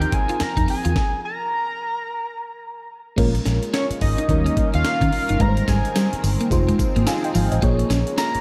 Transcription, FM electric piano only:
0.00 0.91 F3 medium
0.00 0.92 C4 medium
0.00 0.92 D#4 medium
0.00 0.92 A#4 medium
3.16 4.26 G#3 medium
3.16 4.27 C#4 medium
3.16 4.27 F4 medium
3.16 4.27 A#4 medium
4.28 4.36 F#3 medium
4.28 5.38 C#4 medium
4.28 5.38 D#4 medium
4.28 5.39 A#4 medium
4.35 5.40 G3 medium
5.39 6.49 G3 medium
5.39 6.49 G#3 medium
5.39 6.49 D#4 medium
5.39 5.49 B4 medium
5.48 6.51 C5 medium
6.50 7.60 G#3 medium
6.50 7.60 D#4 medium
6.50 7.60 F4 medium
6.50 7.06 C5 medium
7.07 7.23 F5 medium
7.07 7.23 G#5 medium
7.24 7.35 D#5 medium
7.24 7.35 G5 medium
7.35 7.51 F5 medium
7.52 7.78 C5 medium
7.52 7.78 D#5 medium
7.61 8.41 A#3 medium
7.61 8.41 F4 medium
7.61 8.41 G#4 medium
7.61 8.41 C#5 medium

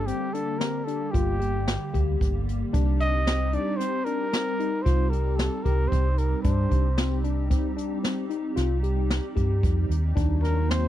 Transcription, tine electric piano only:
0.07 0.28 C4 medium
0.35 0.55 D4 medium
0.60 0.81 C4 medium
0.87 1.08 D4 medium
1.13 1.34 F4 medium
1.40 1.81 G4 medium
1.94 2.35 G4 medium
2.73 3.15 D4 medium
3.27 3.47 C4 medium
3.54 3.74 D4 medium
3.80 4.00 C4 medium
4.06 4.27 D4 medium
4.33 4.53 C4 medium
4.60 4.80 D#4 medium
4.86 5.06 F4 medium
5.12 5.53 G4 medium
5.65 6.06 G4 medium
6.45 6.86 D4 medium
6.97 7.18 C4 medium
7.24 7.45 D4 medium
7.50 7.71 C4 medium
7.76 7.97 D4 medium
8.03 8.24 C4 medium
8.30 8.51 D#4 medium
8.56 8.77 F4 medium
8.83 9.24 G4 medium
9.36 9.77 G4 medium
10.16 10.57 D4 medium
10.69 10.88 C4 medium

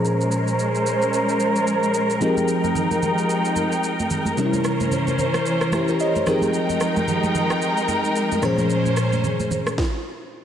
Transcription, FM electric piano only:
0.00 1.90 A#2 medium
0.00 1.90 F3 medium
0.00 1.91 C#4 medium
0.00 1.91 G#4 medium
0.00 1.95 C5 medium
2.21 4.33 F3 medium
2.21 4.33 C4 medium
2.21 4.34 D#4 medium
2.21 4.34 G4 medium
2.21 4.34 G#4 medium
2.21 4.35 A#4 medium
4.37 6.23 C3 medium
4.37 6.23 G3 medium
4.37 6.23 C#4 medium
4.37 4.46 D#4 medium
4.37 5.71 A#4 medium
4.46 5.73 E4 medium
5.73 5.88 E4 medium
5.73 5.88 G4 medium
5.73 5.98 C6 medium
5.89 6.00 G4 medium
5.89 6.00 A#4 medium
6.01 6.15 A#4 medium
6.01 6.15 C#5 medium
6.01 6.50 D#5 medium
6.16 6.42 C5 medium
6.26 8.39 F3 medium
6.26 8.39 C4 medium
6.26 8.39 D#4 medium
6.26 8.39 G4 medium
6.26 8.40 G#4 medium
6.26 8.40 A#4 medium
8.42 9.75 A#2 medium
8.42 9.75 F3 medium
8.42 9.76 C#4 medium
8.42 9.76 G#4 medium
8.42 9.76 C5 medium

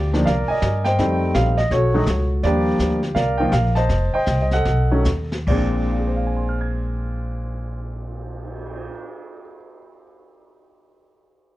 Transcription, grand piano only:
0.00 0.23 F4 soft
0.00 0.23 G4 medium
0.13 0.26 D#3 medium
0.13 0.25 F3 medium
0.13 0.26 A#3 medium
0.13 0.26 D4 medium
0.26 0.95 A#4 medium
0.26 0.49 D5 medium
0.26 0.31 F5 medium
0.48 0.96 D5 medium
0.48 0.84 D#5 medium
0.48 0.86 G#5 medium
0.84 1.54 C5 soft
0.84 1.54 D#5 soft
0.84 1.36 G5 medium
0.99 1.53 D#3 soft
0.99 1.53 G3 medium
0.99 1.54 A3 soft
0.99 1.54 C4 medium
1.35 1.56 F5 medium
1.57 1.70 D#5 medium
1.72 2.40 F#4 soft
1.72 2.40 A4 soft
1.72 2.26 C#5 medium
1.94 2.05 D#3 medium
1.94 2.06 F#3 medium
1.94 2.06 A3 medium
1.94 2.06 D#4 medium
2.43 2.98 F3 medium
2.43 2.98 G3 medium
2.43 2.98 A#3 medium
2.43 2.98 D4 medium
2.43 3.12 F4 medium
2.43 3.12 G4 medium
2.43 2.98 D5 medium
3.14 3.85 A#4 medium
3.14 3.85 D5 medium
3.14 3.38 F5 medium
3.37 3.51 D#3 medium
3.37 3.51 F3 medium
3.37 3.51 A#3 medium
3.37 3.52 F4 medium
3.37 3.52 G5 medium
3.51 3.73 F5 medium
3.75 4.13 C5 medium
3.75 4.13 D#5 medium
3.75 4.14 A5 medium
4.13 4.64 C5 medium
4.13 4.41 D#5 medium
4.13 4.43 G5 medium
4.42 4.52 D#5 medium
4.53 5.30 A4 medium
4.53 5.30 D#5 soft
4.53 5.04 F#5 medium
4.92 5.05 D#3 medium
4.92 5.05 F#3 medium
4.92 5.06 A3 medium
4.92 5.06 C#4 medium
5.48 8.92 A#2 medium
5.48 8.94 G#3 soft
5.48 8.94 C4 medium
5.48 8.96 D4 medium
5.48 8.88 D5 medium
5.92 9.32 F4 soft
5.99 9.40 G#4 soft
6.07 9.47 C5 soft
6.16 9.56 F5 soft
6.27 9.67 G#5 soft
6.37 9.77 C6 soft
6.49 9.89 F6 soft
6.61 10.01 G#6 soft

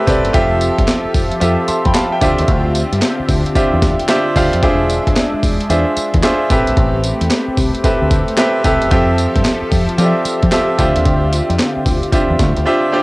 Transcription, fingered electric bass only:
0.07 0.21 C2 loud
0.24 0.32 F#1 loud
0.34 0.69 F1 loud
0.79 0.86 G1 medium
1.05 muted fingered electric bass stroke soft
1.15 1.28 F1 medium
1.41 1.55 F2 loud
1.68 muted fingered electric bass stroke medium
1.86 1.93 F2 loud
2.21 2.35 D2 loud
2.39 2.46 D#2 medium
2.48 2.83 D2 loud
2.92 3.00 G2 loud
3.20 muted fingered electric bass stroke soft
3.29 3.42 D2 medium
3.55 muted fingered electric bass stroke soft
3.73 3.94 E2 loud
4.36 4.49 D2 medium
4.54 4.61 F2 medium
4.63 4.97 E1 loud
5.07 5.14 G1 medium
5.34 muted fingered electric bass stroke soft
5.43 5.57 E1 medium
5.70 5.83 E2 loud
5.97 muted fingered electric bass stroke soft
6.14 6.21 E2 loud
6.50 6.64 A1 medium
6.68 6.75 A#1 medium
6.77 7.11 A1 loud
7.21 7.28 E2 medium
7.48 muted fingered electric bass stroke soft
7.57 7.71 C2 medium
7.84 muted fingered electric bass stroke medium
8.02 8.22 D2 loud
8.65 8.78 C2 medium
8.82 8.89 F#1 medium
8.91 9.26 F2 loud
9.36 9.43 G2 medium
9.62 muted fingered electric bass stroke soft
9.72 9.85 F2 medium
9.98 10.12 F3 loud
10.25 muted fingered electric bass stroke soft
10.43 10.50 F3 loud
10.79 10.92 D2 medium
10.96 11.03 D#2 medium
11.06 11.40 D2 loud
11.50 11.57 F2 loud
11.77 muted fingered electric bass stroke soft
11.86 11.99 D2 medium
12.30 12.37 E2 medium
12.39 12.53 D2 loud
12.57 12.64 D2 loud

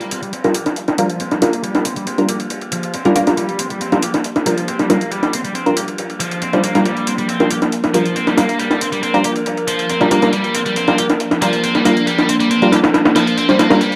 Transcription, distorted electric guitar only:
0.00 0.10 G3 medium
0.11 0.16 C4 medium
0.23 0.30 G3 medium
0.33 0.54 C4 medium
0.55 0.59 G4 medium
0.98 1.19 F3 medium
1.20 1.30 C4 medium
1.31 1.38 G3 medium
1.42 1.63 A#3 medium
1.64 1.84 G3 medium
1.85 1.90 C4 medium
1.97 2.04 G3 medium
2.07 2.28 C4 medium
2.29 2.33 G4 medium
2.72 2.93 F3 medium
2.94 3.04 C4 medium
3.05 3.12 G3 medium
3.16 3.36 A#3 medium
3.38 3.58 G3 medium
3.59 3.64 C4 medium
3.71 3.77 G3 medium
3.81 4.02 C4 medium
4.03 4.07 G4 medium
4.47 4.67 F3 medium
4.68 4.78 C4 medium
4.79 4.86 G3 medium
4.90 5.11 A#3 medium
5.12 5.32 G3 medium
5.33 5.38 C4 medium
5.45 5.51 G3 medium
5.55 5.76 C4 medium
5.76 5.81 G4 medium
6.20 6.41 F3 medium
6.42 6.52 C4 medium
6.53 6.60 G3 medium
6.64 6.84 A#3 medium
6.86 7.06 G3 medium
7.07 7.12 C4 medium
7.19 7.25 G3 medium
7.29 7.49 C4 medium
7.51 7.55 G4 medium
7.94 8.15 F3 medium
8.16 8.26 C4 medium
8.28 8.34 G3 medium
8.38 8.58 A#3 medium
8.60 8.80 G3 medium
8.81 8.86 C4 medium
8.93 8.99 G3 medium
9.03 9.23 C4 medium
9.25 9.29 G4 medium
9.68 9.89 F3 medium
9.90 10.00 C4 medium
10.01 10.08 G3 medium
10.11 10.32 A#3 medium
10.33 10.54 G3 medium
10.55 10.59 C4 medium
10.66 10.73 G3 medium
10.77 10.97 C4 medium
10.98 11.03 G4 loud
11.42 11.62 F3 medium
11.63 11.74 C4 medium
11.75 11.82 G3 medium
11.85 12.06 A#3 medium
12.07 12.28 G3 medium
12.29 12.33 C4 medium
12.40 12.47 G3 medium
12.50 12.71 C4 medium
12.72 12.77 G4 medium
13.16 13.36 F3 medium
13.37 13.47 C4 medium
13.48 13.56 G3 medium
13.59 13.80 A#3 medium
13.81 13.96 G3 medium

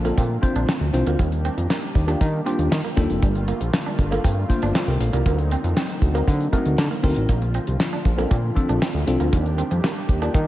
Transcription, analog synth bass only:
0.00 0.12 A#1 medium
0.18 0.38 A#2 loud
0.55 0.65 A#1 medium
0.81 0.91 D2 medium
0.93 1.04 C2 loud
1.06 1.16 D2 medium
1.19 1.50 D#2 loud
1.57 1.67 F2 medium
1.95 2.15 D#2 medium
2.21 2.41 D#3 loud
2.59 2.69 D#2 medium
2.71 2.81 D#3 loud
2.97 3.07 D#2 medium
3.10 3.20 F1 medium
3.23 3.53 G1 loud
3.61 3.71 A#1 medium
3.99 4.19 G1 medium
4.25 4.45 G2 loud
4.63 4.73 G1 medium
4.87 4.98 C2 medium
5.00 5.10 A#1 medium
5.13 5.23 C2 medium
5.26 5.56 D2 loud
5.64 5.74 F2 loud
6.02 6.22 D2 medium
6.28 6.48 D3 loud
6.66 6.76 D2 medium
6.78 6.88 D3 loud
7.04 7.14 D2 medium
7.17 7.27 A1 medium
7.29 7.59 A#1 loud
7.68 7.78 C2 medium
8.05 8.26 A#1 medium
8.31 8.51 A#2 loud
8.70 8.79 A#1 medium
8.94 9.05 D2 loud
9.08 9.18 C2 medium
9.20 9.30 D2 loud
9.33 9.63 D#2 loud
9.71 9.81 F2 medium
10.09 10.29 D#2 medium
10.35 10.47 D#3 loud

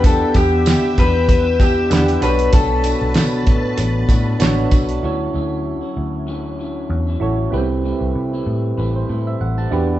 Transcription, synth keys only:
0.00 0.85 D4 medium
0.00 0.86 G4 medium
0.00 0.87 B4 medium
0.00 0.86 F#5 medium
1.90 2.20 D4 medium
1.90 2.22 G4 medium
1.90 2.23 B4 medium
1.90 2.22 F#5 medium
2.21 3.35 D4 medium
2.21 3.35 F#4 medium
2.21 3.35 A4 medium
2.21 3.36 C#5 medium
4.39 4.97 D4 medium
4.39 4.97 F#4 medium
4.39 4.97 A4 medium
4.39 4.98 C#5 loud
5.03 6.16 E4 medium
5.03 6.17 F#4 medium
5.03 6.17 A4 medium
5.03 6.17 C#5 medium
7.20 7.49 E4 medium
7.20 7.50 F#4 medium
7.20 7.50 A4 medium
7.20 7.51 C#5 medium
7.51 7.59 B3 medium
7.51 8.66 E4 medium
7.51 8.66 G4 medium
7.51 8.67 B4 medium
7.58 8.69 C4 medium
8.78 8.94 B4 medium
8.96 9.26 C5 medium
9.27 9.40 E5 medium
9.41 9.57 F#5 medium
9.58 9.88 A5 medium
9.71 9.99 D4 medium
9.71 9.99 F#4 medium
9.71 9.99 G4 medium
9.71 9.99 B4 medium

